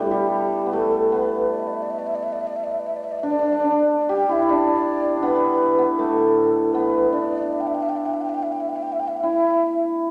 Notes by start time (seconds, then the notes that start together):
Already playing: G3 A3 B3 D4 E4
0.07 E4
0.11 G3 G4
0.66 B3
0.73 A3 A4
1.10 B3 B4
1.51 D5
1.60 E5
1.67 D5
1.74 E5
1.82 D5
1.91 E5
1.99 D5
2.07 E5
2.15 D5
2.23 E5
2.33 D5
2.41 E5
2.47 D5
2.56 E5
2.64 D5
2.71 E5
2.80 D5
2.87 E5
2.96 D5
3.04 E5
3.12 D5
3.19 D4 E5
3.24 D5
3.30 D4
3.39 D4
3.46 D4
3.52 D4
3.60 D4
3.65 D4
3.71 D4
4.09 G4 G5
4.29 E4 E5
4.42 E4
4.49 D4 D5
5.17 D4
5.22 B3 B4
5.78 B3
5.98 A3 A4
6.73 B3 B4
7.10 D4 D5
7.52 E5
7.61 G5
7.67 E5
7.75 G5
7.82 E5
7.89 G5
7.97 E5
8.06 G5
8.14 E5
8.21 G5
8.29 E5
8.34 G5
8.43 E5
8.52 G5
8.60 E5
8.69 G5
8.76 E5
8.82 G5
8.92 E5
9.00 G5
9.08 E5
9.17 E5 G5
9.23 E4